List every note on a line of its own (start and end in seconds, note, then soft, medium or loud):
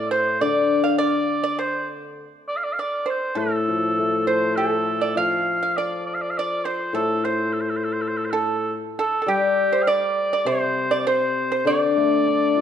0.00 0.41 A2 soft
0.00 0.11 D5 medium
0.11 0.39 C5 medium
0.11 0.43 C5 medium
0.41 2.19 D3 soft
0.41 0.83 D5 medium
0.84 0.98 F5 medium
0.98 1.41 D5 medium
0.98 1.60 D5 medium
1.44 1.58 D5 medium
1.59 1.87 C5 medium
1.59 1.89 C5 medium
2.48 2.58 D5 medium
2.57 2.65 F5 medium
2.64 2.75 D5 medium
2.73 2.81 F5 medium
2.79 3.05 D5 soft
2.79 3.11 D5 medium
3.06 3.34 C5 soft
3.10 3.39 C5 medium
3.35 5.17 A2 soft
3.35 4.23 A4 medium
3.35 4.27 A4 medium
3.68 4.88 F3 soft
3.99 5.18 A3 soft
4.27 4.56 C5 medium
4.27 4.58 C5 medium
4.56 5.17 A4 medium
4.56 5.00 A4 medium
5.01 5.16 D5 medium
5.16 6.95 F3 soft
5.16 5.59 F5 medium
5.16 5.79 F5 medium
5.63 5.76 F5 medium
5.77 6.06 D5 medium
5.77 6.05 D5 medium
6.07 6.16 D5 medium
6.15 6.23 F5 medium
6.22 6.32 D5 medium
6.30 6.39 F5 medium
6.38 6.66 D5 medium
6.38 6.64 D5 medium
6.64 6.94 C5 medium
6.64 6.93 C5 medium
6.93 8.70 A2 soft
6.93 7.22 A4 medium
6.93 7.26 A4 medium
7.24 7.55 C5 medium
7.24 7.52 C5 medium
7.53 7.62 A4 soft
7.61 7.72 C5 soft
7.70 7.78 A4 soft
7.77 7.86 C5 soft
7.84 7.94 A4 medium
7.92 8.03 C5 medium
8.02 8.09 A4 soft
8.08 8.19 C5 medium
8.17 8.26 A4 soft
8.25 8.32 C5 soft
8.31 8.73 A4 medium
8.31 8.71 A4 medium
8.99 9.21 A4 medium
8.99 9.31 A4 medium
9.22 9.29 A4 soft
9.26 11.06 G3 medium
9.26 9.70 G4 medium
9.26 9.84 G4 medium
9.73 9.87 C5 medium
9.83 9.90 F5 medium
9.87 10.29 D5 medium
9.87 10.48 D5 medium
10.33 10.47 D5 medium
10.45 11.66 C3 soft
10.45 10.89 C5 medium
10.45 10.99 C5 medium
10.91 11.06 D5 medium
11.00 11.08 D5 medium
11.07 11.66 C5 medium
11.07 11.49 C5 medium
11.52 11.66 C5 medium
11.65 12.61 D3 medium
11.65 12.61 D5 medium
11.96 12.61 A3 soft
12.27 12.61 D4 soft
12.56 12.61 F4 soft